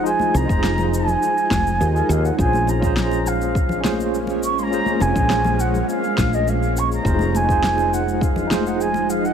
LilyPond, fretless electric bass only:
\new Staff \with { instrumentName = "Fretless electric bass" } { \clef bass \time 4/4 \key bes \minor \tempo 4 = 103 f,,16 r16 c,16 f,,4~ f,,16 r8 f,,8 ees,16 r16 ees,16 r16 | bes,,1~ | bes,,16 r16 f,,16 bes,,4~ bes,,16 r8 bes,,4. | f,,1 | }